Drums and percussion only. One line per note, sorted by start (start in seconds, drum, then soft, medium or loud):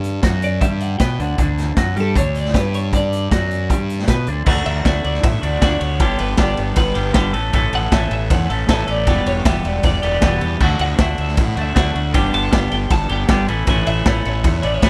0.04 closed hi-hat medium
0.23 kick loud
0.23 snare medium
0.23 closed hi-hat medium
0.42 closed hi-hat medium
0.61 kick loud
0.61 closed hi-hat medium
0.80 closed hi-hat soft
1.00 kick loud
1.00 snare loud
1.00 closed hi-hat medium
1.20 closed hi-hat medium
1.38 kick loud
1.38 closed hi-hat medium
1.58 snare soft
1.58 closed hi-hat medium
1.77 kick medium
1.77 snare medium
1.77 closed hi-hat medium
1.97 closed hi-hat medium
2.16 kick loud
2.16 closed hi-hat medium
2.35 closed hi-hat medium
2.45 snare soft
2.54 kick loud
2.54 snare medium
2.54 closed hi-hat medium
2.74 closed hi-hat medium
2.93 kick medium
2.93 closed hi-hat medium
3.13 closed hi-hat medium
3.31 kick loud
3.31 snare medium
3.31 closed hi-hat medium
3.51 closed hi-hat medium
3.70 kick loud
3.70 closed hi-hat medium
3.90 closed hi-hat medium
3.99 snare soft
4.08 kick medium
4.08 snare loud
4.08 closed hi-hat medium
4.27 closed hi-hat medium
4.46 kick loud
4.46 crash loud
4.66 ride medium
4.85 kick loud
4.85 snare loud
4.85 ride medium
5.04 ride medium
5.14 snare soft
5.23 kick loud
5.23 ride loud
5.43 ride medium
5.62 kick loud
5.62 snare loud
5.62 ride loud
5.81 ride medium
6.00 kick loud
6.00 ride loud
6.19 ride medium
6.37 kick loud
6.37 snare loud
6.37 ride loud
6.57 ride medium
6.76 kick loud
6.76 ride loud
6.95 ride medium
7.14 kick loud
7.14 snare loud
7.14 ride medium
7.34 ride medium
7.53 kick loud
7.53 ride medium
7.73 ride medium
7.92 kick loud
7.92 snare loud
7.92 ride medium
8.11 ride medium
8.30 kick loud
8.30 ride loud
8.50 ride medium
8.69 kick loud
8.69 snare loud
8.69 ride medium
8.88 ride medium
9.07 kick loud
9.07 ride medium
9.26 ride medium
9.45 kick loud
9.45 snare loud
9.45 ride loud
9.65 ride medium
9.83 kick loud
9.83 ride loud
10.03 ride medium
10.22 kick loud
10.22 snare loud
10.22 ride loud
10.41 ride medium
10.60 kick loud
10.60 crash medium
10.79 ride medium
10.98 kick loud
10.98 snare loud
10.98 ride medium
11.18 ride medium
11.28 snare soft
11.37 kick loud
11.37 ride loud
11.57 ride medium
11.76 kick loud
11.76 snare loud
11.76 ride loud
11.95 ride medium
12.14 kick loud
12.14 ride medium
12.34 ride medium
12.53 kick loud
12.53 snare loud
12.53 ride medium
12.72 ride medium
12.90 kick loud
12.90 ride medium
13.09 ride medium
13.28 kick loud
13.28 snare loud
13.28 ride loud
13.48 ride medium
13.67 kick loud
13.67 ride medium
13.87 ride medium
14.06 kick loud
14.06 snare loud
14.06 ride medium
14.25 ride medium
14.44 kick loud
14.44 ride medium
14.63 ride medium
14.82 kick loud
14.82 snare loud
14.82 ride medium